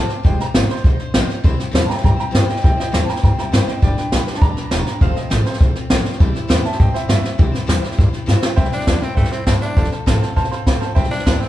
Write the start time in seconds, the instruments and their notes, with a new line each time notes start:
Already playing: upright piano A5
0.09 steel-string acoustic guitar C4 F4 C5, muted upright bass stroke, snare
0.23 upright bass F1, steel-string acoustic guitar F3 G#3 D#4 F4 C5, upright piano G3 G#3 D#4 G5, kick, snare
0.39 steel-string acoustic guitar D#4 F4 C5, upright piano A#5, muted upright bass stroke, snare
0.54 upright bass G#1, steel-string acoustic guitar F3 G#3 D#4 F4 C5, upright piano D#5, snare, hi-hat pedal
0.68 steel-string acoustic guitar D#4 F4 C5, upright piano C5, muted upright bass stroke, snare
0.76 snare
0.84 upright bass C2, steel-string acoustic guitar G#3 D#4 F4 C5, kick, snare
0.99 steel-string acoustic guitar D#4 F4 C5, snare
1.14 upright bass A#1, steel-string acoustic guitar F3 G#3 D#4 F4 C5, snare, hi-hat pedal
1.28 steel-string acoustic guitar D#4 F4 C5, muted upright bass stroke, snare
1.44 upright bass C2, steel-string acoustic guitar C3 E3 G3 C4 E4 C5, kick, snare
1.58 steel-string acoustic guitar G3 C4 E4 C5, muted upright bass stroke, snare
1.71 upright bass E2, steel-string acoustic guitar C3 E3 G3 C4 E4 C5, snare, hi-hat pedal
1.85 upright piano G3 C4 A5, steel-string acoustic guitar G3 C4 E4 C5, muted upright bass stroke
1.89 upright piano E4 G5 A#5, snare
1.98 snare
2.02 upright bass G2, steel-string acoustic guitar G3 C4 E4 C5, upright piano G5 A#5, kick, snare
2.16 steel-string acoustic guitar G3 C4 E4 C5, upright piano G5 A#5, snare
2.31 upright bass G2, steel-string acoustic guitar C3 E3 G3 C4 E4 C5, upright piano D#5, snare, hi-hat pedal
2.35 upright piano G5
2.46 steel-string acoustic guitar G3 C4 E4 C5, muted upright bass stroke, snare
2.51 upright piano D#5 G5
2.57 snare
2.61 upright bass C2, steel-string acoustic guitar C3 E3 G3 C4 E4 C5, upright piano G3 C4 E4 D#5 G5, kick, snare
2.77 steel-string acoustic guitar G3 C4 E4 C5, upright piano D#5 G5, muted upright bass stroke, snare
2.91 upright bass E2, steel-string acoustic guitar C3 E3 G3 C4 E4 C5, snare, hi-hat pedal
3.05 steel-string acoustic guitar E4 C5, upright piano G5 A5, muted upright bass stroke
3.09 steel-string acoustic guitar G3 C4, upright piano A#5, snare
3.16 snare
3.23 upright bass G2, steel-string acoustic guitar G3 C4 E4 C5, upright piano G5 A#5, kick, snare
3.37 upright piano G3 C4 E4 G5 A#5, steel-string acoustic guitar G3 C4 E4 C5, muted upright bass stroke, snare
3.52 upright bass G2, steel-string acoustic guitar C3 E3 G3 C4 E4 C5, upright piano D#5 G5, snare, hi-hat pedal
3.67 steel-string acoustic guitar G3 C4 E4 C5, upright piano D#5 G5, muted upright bass stroke, snare
3.82 upright bass G1, steel-string acoustic guitar G3 D4 G4 B4, upright piano D5 G5, kick, snare
3.97 steel-string acoustic guitar D4 G4 B4, upright piano G5, muted upright bass stroke, snare
4.12 upright bass B1, steel-string acoustic guitar G3 D4 G4 B4, snare, hi-hat pedal
4.26 upright piano G3 B3 D4, steel-string acoustic guitar G4 B4, muted upright bass stroke, snare
4.30 steel-string acoustic guitar D4
4.34 upright piano A5, snare
4.42 upright bass D2, steel-string acoustic guitar G3 D4 G4 B4, upright piano A#5, kick, snare
4.56 steel-string acoustic guitar D4 G4 B4, muted upright bass stroke, snare
4.71 upright bass E1, steel-string acoustic guitar G3 D4 G4 B4, snare, hi-hat pedal
4.86 steel-string acoustic guitar D4 G4 B4, snare
5.00 upright bass F1, upright piano F3 A3 C4 F5, steel-string acoustic guitar F3 A3 C4 F4 C5, kick, snare
5.15 steel-string acoustic guitar C4 F4 C5, upright piano D#5, snare
5.30 upright bass A1, steel-string acoustic guitar F3 A3 C4 F4 C5, upright piano D#5, snare, hi-hat pedal
5.45 upright piano F3 A3 C4 C5, steel-string acoustic guitar C4 F4 C5, muted upright bass stroke, snare
5.53 snare
5.60 upright bass C2, steel-string acoustic guitar A3 C4 F4 C5, kick, snare
5.75 steel-string acoustic guitar C4 F4 C5, muted upright bass stroke, snare
5.90 upright bass B1, steel-string acoustic guitar F3 A3 C4 F4 C5, snare, hi-hat pedal
6.05 steel-string acoustic guitar C4 F4 C5, muted upright bass stroke, snare
6.13 snare
6.19 upright bass C2, steel-string acoustic guitar C3 E3 G3 C4 E4 C5, upright piano E3 G3 C4, kick, snare
6.34 steel-string acoustic guitar G3 C4 E4 C5, muted upright bass stroke, snare
6.48 upright bass E2, steel-string acoustic guitar C3 E3 G3 C4 E4 C5, snare, hi-hat pedal
6.61 steel-string acoustic guitar E4 C5, upright piano E5 G#5, muted upright bass stroke
6.65 steel-string acoustic guitar G3 C4, upright piano A5, snare
6.73 snare
6.79 upright bass G2, steel-string acoustic guitar G3 C4 E4 C5, upright piano D#5 G5, kick
6.93 steel-string acoustic guitar G3 C4 E4 C5, upright piano C5 E5, muted upright bass stroke, snare
7.06 upright bass G2, steel-string acoustic guitar C3 E3 G3 C4 E4 C5, upright piano D#5 E5, snare, hi-hat pedal
7.23 steel-string acoustic guitar G3 C4 E4 C5, muted upright bass stroke, snare
7.38 upright bass C2, steel-string acoustic guitar C3 E3 G3 C4 E4 C5, upright piano E3 G3 C4, kick, snare
7.52 steel-string acoustic guitar G3 C4 E4 C5, muted upright bass stroke, snare
7.66 upright bass E2, steel-string acoustic guitar C3 E3 G3 C4 E4 C5, snare, hi-hat pedal
7.82 upright piano E3 G3 C4, steel-string acoustic guitar G3 C4 E4 C5, muted upright bass stroke, snare
7.92 snare
7.97 upright bass G2, steel-string acoustic guitar G3 C4 E4 C5, kick, snare
8.13 steel-string acoustic guitar G3 C4 E4 C5, muted upright bass stroke, snare
8.26 upright bass G2, steel-string acoustic guitar C3 E3 G3 C4 E4 C5, snare, hi-hat pedal
8.41 steel-string acoustic guitar G3 C4 E4 C5, snare
8.56 upright bass C2, steel-string acoustic guitar C3 E3 G3 C4 E4 C5, upright piano C5 E5 G5, kick, snare
8.65 snare
8.71 steel-string acoustic guitar G3 C4 E4 C5, tenor saxophone D4, upright piano C5 E5 G5, muted upright bass stroke, snare
8.80 snare
8.85 upright bass E2, steel-string acoustic guitar C3 E3 G3 C4 E4 C5, upright piano C5 E5 A5, kick, snare, hi-hat pedal
9.01 steel-string acoustic guitar G3 C4 E4 C5, tenor saxophone C4, upright piano C5 E5 G5, muted upright bass stroke, snare
9.15 upright bass G2, steel-string acoustic guitar G3 C4, tenor saxophone A3, upright piano C5 E5 G5, kick, snare
9.19 steel-string acoustic guitar E4 C5
9.24 snare
9.31 steel-string acoustic guitar G3 C4 E4 C5, tenor saxophone C4, upright piano C5 E5 G5, muted upright bass stroke, snare
9.46 upright bass G2, steel-string acoustic guitar C3 E3 G3 C4 E4 C5, tenor saxophone C4, upright piano C5 E5 A5, kick, snare, hi-hat pedal
9.61 steel-string acoustic guitar G3 C4 E4 C5, tenor saxophone D4, upright piano C5 E5 A5, snare
9.76 upright bass F1, steel-string acoustic guitar F3 A3 C4 F4 A4, upright piano C5 F5 A5, kick, snare
9.85 snare
9.92 steel-string acoustic guitar C4 F4 A4, upright piano C5 F5 A5, muted upright bass stroke, snare
10.06 upright bass A1, steel-string acoustic guitar F3 A3 C4 F4 A4, upright piano C5 F5 A5, kick, snare, hi-hat pedal
10.21 steel-string acoustic guitar F4 A4, upright piano C5 F5 A5, muted upright bass stroke, snare
10.26 steel-string acoustic guitar C4
10.36 upright bass C2, steel-string acoustic guitar A3 C4 F4 A4, upright piano C5 F5 A5, kick, snare
10.44 snare
10.51 steel-string acoustic guitar F4 A4, upright piano C5 F5 C6, muted upright bass stroke, snare
10.55 steel-string acoustic guitar C4
10.66 upright bass C2, steel-string acoustic guitar F3 A3 C4 F4 A4, upright piano C5 F5 B5, kick, snare, hi-hat pedal
10.80 steel-string acoustic guitar C4 F4 A4, upright piano C5 F5 A5, muted upright bass stroke, snare
10.95 upright bass C2, steel-string acoustic guitar C3 E3 G3 C4 E4 C5, upright piano C5 E5 G5, kick, snare
11.04 snare
11.10 steel-string acoustic guitar G3 C4 E4 C5, tenor saxophone D4, upright piano C5 E5 A5, muted upright bass stroke, snare
11.19 snare
11.25 upright bass E2, steel-string acoustic guitar C3 E3 G3 C4 E4 C5, upright piano C5 E5 A5, kick, snare, hi-hat pedal
11.40 steel-string acoustic guitar G3 C4 E4 C5, tenor saxophone C4, upright piano C5 E5 G5, muted upright bass stroke, snare